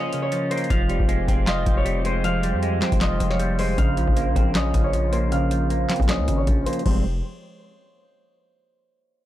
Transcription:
0.00 0.12 C#3 medium
0.00 0.67 C#3 medium
0.00 0.31 F3 medium
0.00 0.50 A#3 medium
0.00 0.67 A#3 medium
0.00 0.70 C#4 loud
0.00 0.67 F4 medium
0.00 0.28 C5 medium
0.00 0.67 C5 medium
0.00 1.47 D#5 medium
0.00 0.70 F5 loud
0.13 0.71 C#3 medium
0.13 closed hi-hat medium
0.22 0.56 C#5 medium
0.32 0.69 F3 medium
0.32 closed hi-hat medium
0.50 0.70 A#3 medium
0.50 1.83 C5 medium
0.50 closed hi-hat medium
0.50 open hi-hat medium
0.58 closed hi-hat medium
0.64 closed hi-hat soft
0.70 0.99 F1 loud
0.70 1.65 F3 loud
0.70 3.75 F3 medium
0.70 3.75 C4 medium
0.70 3.75 G4 medium
0.70 6.82 C5 medium
0.70 2.24 F5 medium
0.70 kick loud
0.70 closed hi-hat medium
0.89 1.08 G3 medium
0.89 closed hi-hat medium
1.00 1.27 F1 loud
1.00 kick medium
1.09 1.85 G#3 medium
1.09 closed hi-hat medium
1.28 1.65 F1 loud
1.28 2.24 C4 medium
1.28 kick medium
1.28 closed hi-hat medium
1.47 2.43 F4 loud
1.47 3.00 D#5 medium
1.47 snare loud
1.47 clap loud
1.47 closed hi-hat medium
1.66 2.55 F1 loud
1.66 2.23 F3 medium
1.66 kick loud
1.66 closed hi-hat medium
1.77 2.12 C#5 medium
1.85 2.04 G3 medium
1.85 closed hi-hat medium
2.05 2.61 G#3 medium
2.05 3.36 C5 medium
2.05 closed hi-hat medium
2.24 3.19 F3 medium
2.24 3.77 F5 loud
2.24 closed hi-hat medium
2.43 3.38 G3 medium
2.43 closed hi-hat medium
2.54 2.80 F2 medium
2.62 3.58 G#3 medium
2.62 closed hi-hat medium
2.82 3.78 C4 medium
2.82 snare loud
2.82 clap medium
2.82 closed hi-hat soft
2.92 3.19 F1 loud
2.92 kick medium
2.92 closed hi-hat medium
3.01 3.78 F4 loud
3.01 4.54 D#5 medium
3.01 snare loud
3.01 clap loud
3.01 closed hi-hat medium
3.20 3.76 F1 loud
3.20 3.77 F3 medium
3.20 closed hi-hat medium
3.30 3.65 C#5 medium
3.30 snare medium
3.39 3.78 G3 medium
3.39 closed hi-hat medium
3.59 3.78 G#3 medium
3.59 4.90 C5 medium
3.59 open hi-hat medium
3.78 4.06 A#1 loud
3.78 4.73 C#3 loud
3.78 6.83 C#3 medium
3.78 6.83 A#3 medium
3.78 6.83 F4 medium
3.78 5.31 F5 loud
3.78 kick loud
3.78 closed hi-hat medium
3.97 4.92 F3 medium
3.97 closed hi-hat medium
4.07 4.35 A#1 loud
4.07 kick loud
4.17 5.11 A#3 medium
4.17 closed hi-hat medium
4.36 4.73 A#1 loud
4.36 4.54 C4 medium
4.36 kick loud
4.36 closed hi-hat medium
4.55 5.51 C#4 loud
4.55 6.08 D#5 medium
4.55 snare loud
4.55 clap loud
4.55 closed hi-hat medium
4.74 5.86 A#1 loud
4.74 5.31 C#3 medium
4.74 kick loud
4.74 closed hi-hat medium
4.84 5.18 C#5 medium
4.93 5.50 F3 medium
4.93 closed hi-hat medium
5.12 5.69 A#3 medium
5.12 6.44 C5 medium
5.12 closed hi-hat medium
5.32 6.27 C#3 medium
5.32 6.05 F5 loud
5.32 closed hi-hat medium
5.51 6.46 F3 medium
5.51 closed hi-hat medium
5.70 6.65 A#3 medium
5.70 closed hi-hat medium
5.89 6.09 C4 medium
5.89 snare loud
5.89 clap medium
5.89 closed hi-hat medium
5.96 6.20 A#1 loud
5.96 kick medium
5.96 closed hi-hat medium
6.02 closed hi-hat soft
6.08 6.86 C#4 loud
6.08 6.36 D#5 medium
6.08 snare loud
6.08 clap loud
6.08 closed hi-hat medium
6.19 6.27 C#2 loud
6.28 6.46 G#1 loud
6.28 6.85 C#3 medium
6.28 closed hi-hat medium
6.38 6.65 C#5 medium
6.47 6.66 A#1 loud
6.47 6.84 F3 medium
6.47 kick medium
6.47 closed hi-hat medium
6.66 6.86 A#3 medium
6.66 6.81 C5 medium
6.66 closed hi-hat medium
6.66 open hi-hat medium
6.73 closed hi-hat medium
6.79 closed hi-hat soft
6.85 7.21 F1 loud
6.85 7.04 F3 medium
6.85 7.04 G3 medium
6.85 7.04 G#3 medium
6.85 7.04 C4 medium
6.85 7.04 G4 medium
6.85 7.04 C5 medium
6.85 kick loud
6.85 crash medium

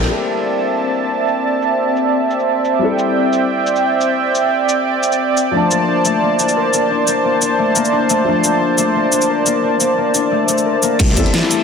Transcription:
0.00 3.13 A#3 loud
0.00 2.03 D4 medium
0.00 1.87 A#4 medium
0.00 snare soft
0.06 2.77 G3 medium
0.06 2.79 C4 medium
0.06 5.50 C4 medium
0.06 2.80 E4 medium
0.06 10.96 D5 medium
0.06 5.50 E5 medium
0.06 2.79 A5 medium
0.11 2.81 A4 medium
0.60 cabasa medium
0.94 cabasa medium
1.03 cabasa soft
1.28 cabasa medium
1.62 cabasa medium
1.96 cabasa medium
2.31 cabasa medium
2.40 cabasa soft
2.65 cabasa soft
2.79 5.51 G3 medium
2.79 5.52 C4 medium
2.79 5.53 E4 medium
2.79 5.52 G5 medium
2.84 5.54 A4 medium
2.99 cabasa medium
3.33 cabasa medium
3.67 cabasa medium
3.76 cabasa soft
4.01 cabasa medium
4.35 cabasa medium
4.69 cabasa medium
5.03 cabasa medium
5.12 cabasa soft
5.37 cabasa medium
5.51 8.23 F3 medium
5.51 5.77 A3 medium
5.51 8.25 D4 medium
5.51 10.96 C5 medium
5.51 10.96 A5 medium
5.57 8.26 A5 medium
5.71 6.11 A#3 medium
5.71 cabasa medium
5.88 6.39 D4 medium
6.05 6.28 A3 medium
6.05 cabasa medium
6.22 6.73 A#3 medium
6.39 6.90 D4 medium
6.39 cabasa medium
6.49 cabasa soft
6.57 7.65 A#4 medium
6.73 7.07 A#3 medium
6.73 cabasa medium
6.91 7.41 D4 medium
7.08 7.24 A#3 medium
7.08 cabasa medium
7.25 7.65 A#3 medium
7.42 7.92 D4 medium
7.42 cabasa medium
7.59 7.82 A3 medium
7.76 8.16 A#3 loud
7.76 cabasa medium
7.85 cabasa soft
7.93 8.61 D4 loud
8.10 8.26 A3 medium
8.10 cabasa medium
8.24 10.96 F3 medium
8.24 8.50 A3 medium
8.24 10.98 D4 medium
8.30 10.99 A5 medium
8.44 8.84 A#3 medium
8.44 cabasa medium
8.61 9.12 D4 medium
8.78 9.01 A3 medium
8.78 cabasa medium
8.95 9.46 A#3 medium
9.12 9.63 D4 loud
9.12 cabasa medium
9.21 cabasa soft
9.29 10.38 A#4 medium
9.46 9.80 A#3 medium
9.46 cabasa medium
9.63 10.14 D4 medium
9.80 9.97 A#3 medium
9.80 cabasa medium
9.98 10.38 A#3 medium
10.15 11.63 D4 medium
10.15 cabasa medium
10.32 10.48 A3 medium
10.49 10.72 A3 loud
10.49 cabasa medium
10.58 cabasa soft
10.66 11.06 A#4 medium
10.83 11.06 A#3 loud
10.83 cabasa medium
10.99 11.15 C2 loud
10.99 11.63 D5 medium
10.99 11.63 E5 medium
10.99 11.63 A5 medium
10.99 kick loud
10.99 closed hi-hat loud
10.99 crash loud
10.99 ride medium
11.09 snare medium
11.14 11.25 E2 loud
11.14 11.63 G3 medium
11.14 11.63 C4 medium
11.14 11.63 E4 medium
11.14 kick medium
11.14 closed hi-hat medium
11.14 ride medium
11.14 cabasa medium
11.19 11.63 A4 loud
11.26 closed hi-hat soft
11.34 11.63 E4 medium
11.34 snare loud
11.34 closed hi-hat loud
11.34 ride medium
11.43 snare medium
11.43 snare soft
11.51 11.63 A3 medium
11.51 closed hi-hat medium
11.51 ride medium
11.51 cabasa medium

